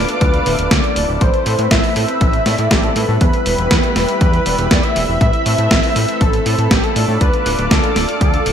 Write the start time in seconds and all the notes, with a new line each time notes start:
Already playing: A3 D4 F4 A4 B4 D5 F5 D6
0.09 closed hi-hat
0.21 D2 B4, kick, closed hi-hat
0.34 closed hi-hat
0.46 D1 A3 D4 F4 E5, open hi-hat
0.59 D1 A3 D4 F4 D5, closed hi-hat
0.71 D2 D5, kick, snare, closed hi-hat
0.84 closed hi-hat
0.96 D1 A3 C4 E4 B4, open hi-hat
1.09 D1
1.21 A1 C4 C5 E5 B5, kick, closed hi-hat
1.34 closed hi-hat
1.46 A2 A3 C4 E4 B4, open hi-hat
1.59 A2, closed hi-hat
1.71 A1 E5, kick, snare, closed hi-hat
1.84 open hi-hat
1.96 A2 A3 C4 E4 B4 E5, open hi-hat
2.08 closed hi-hat
2.21 A1, kick, closed hi-hat
2.33 closed hi-hat
2.46 A2 A3 C4 E4 D5, snare, open hi-hat
2.58 A2, closed hi-hat
2.71 A1 G4, kick, snare, closed hi-hat
2.83 A4, closed hi-hat
2.96 A2 G3 B3 E4 B4, open hi-hat
3.09 A2
3.21 E2 G4 B4 E5, kick, closed hi-hat
3.33 closed hi-hat
3.46 E1 G3 B3 E4 B4, open hi-hat
3.58 E1, closed hi-hat
3.71 E2, kick, snare, closed hi-hat
3.83 closed hi-hat
3.96 E1 G3 B3 E4 B4, snare, open hi-hat
4.08 closed hi-hat
4.21 E2 B4, kick, closed hi-hat
4.33 closed hi-hat
4.46 E1 G3 B3 E4 D5, open hi-hat
4.58 E1 G3 B3 E4 B4, closed hi-hat
4.71 E2 D5, kick, snare, closed hi-hat
4.83 E5, closed hi-hat
4.96 E1 A3 C4 E4 B4, open hi-hat
5.09 E1
5.21 A1 C4 A4 E5, kick, closed hi-hat
5.33 closed hi-hat
5.46 A2 A3 C4 E4 B4, open hi-hat
5.58 A2, closed hi-hat
5.71 A1, kick, snare, closed hi-hat
5.83 open hi-hat
5.96 A2 A3 C4 E4 B4, open hi-hat
6.08 closed hi-hat
6.21 A1 A4, kick, closed hi-hat
6.33 closed hi-hat
6.46 A2 A3 C4 E4 C5, open hi-hat
6.58 A2 A3 C4 E4 B4, closed hi-hat
6.71 A1 G4, kick, snare, closed hi-hat
6.84 A4, closed hi-hat
6.96 A2 A3 D4 F4 D5, open hi-hat
7.08 A2
7.21 D2 B4 D5 F5 D6, kick, closed hi-hat
7.33 closed hi-hat
7.46 D1 A3 D4 F4 D5, open hi-hat
7.59 D1, closed hi-hat
7.71 D2 A4, kick, snare, closed hi-hat
7.84 closed hi-hat
7.96 D1 A3 D4 F4 D5, snare, open hi-hat
8.09 closed hi-hat
8.21 D2 A4, kick, closed hi-hat
8.34 closed hi-hat
8.46 D1 A3 D4 F4 E5, open hi-hat